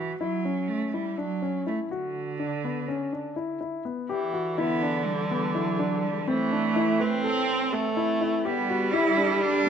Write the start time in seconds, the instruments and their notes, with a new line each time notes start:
Already playing: cello E3, grand piano F#4
0.19 cello F#3, grand piano E4
0.45 grand piano C#4
0.68 cello A3
0.88 cello A3
0.94 cello G3, grand piano E4
1.18 cello F#3, grand piano D4
1.42 grand piano C#4
1.66 cello A3, grand piano E4
1.91 cello D3, grand piano F#4
2.39 grand piano D4
2.64 grand piano B3
2.88 grand piano C#4
3.13 grand piano D4
3.36 grand piano E4
3.61 grand piano E4
3.85 grand piano B3
4.09 woodwind section E2 D3 E3, viola E3, grand piano G4
4.33 grand piano F#4
4.58 viola D3, cello B3, grand piano E4
4.83 grand piano D4
5.06 cello G3
5.31 grand piano B3
5.55 cello F#3, grand piano E4
5.79 grand piano D4
6.03 cello G3
6.27 woodwind section A2 E3 C4, viola E3, cello A3, grand piano C4
6.52 grand piano D4
6.76 grand piano E4
7.00 viola C4, grand piano B4
7.24 cello C4, grand piano A4
7.72 viola A3, grand piano A4
7.97 grand piano E4
8.21 grand piano E4
8.45 woodwind section E2 D3 G3, viola G3, cello B3, grand piano G4
8.69 grand piano F#4
8.93 cello E4, grand piano E4
9.17 grand piano D4
9.35 cello E4
9.41 cello D4
9.66 grand piano B3